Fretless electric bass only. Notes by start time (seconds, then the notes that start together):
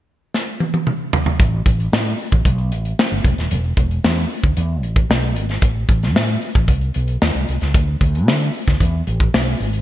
1.40 A1
1.66 A1
1.92 A2
2.32 A1
2.45 B1
2.72 A1
3.12 G1
3.24 E1
3.38 D#1
3.51 E1
3.77 E1
4.04 E2
4.43 D2
4.57 E2
4.83 A1
5.09 B1
5.37 G#1
5.62 A1
5.89 A1
6.15 A2
6.55 A1
6.68 C2
6.96 B1
7.22 D#2
7.35 C2
7.48 C2
7.62 C#2
7.74 D2
8.01 D2
8.28 D3
8.68 D2
8.80 E2
9.07 A1
9.33 B1
9.60 G#1